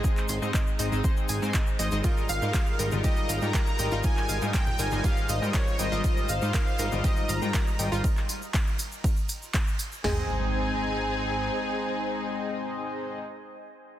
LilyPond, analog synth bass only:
\new Staff \with { instrumentName = "Analog synth bass" } { \clef bass \time 4/4 \key aes \major \tempo 4 = 120 r8 aes,,16 aes,16 r8 aes,,16 aes,,16 r8 aes,,16 aes,16 r8 aes,,16 aes,,16 | r8 aes,,16 aes,16 r8 aes,,16 aes,,16 r8 aes,,16 aes,16 r8 aes,,16 aes,,16 | r8 aes,,16 aes,16 r8 aes,,16 aes,,16 r8 aes,,16 aes,16 r8 aes,,16 aes,,16 | r8 aes,,16 aes,16 r8 aes,,16 aes,,16 r8 aes,,16 aes,16 r8 aes,,16 aes,,16 |
r1 | aes,,2. r4 | r1 | }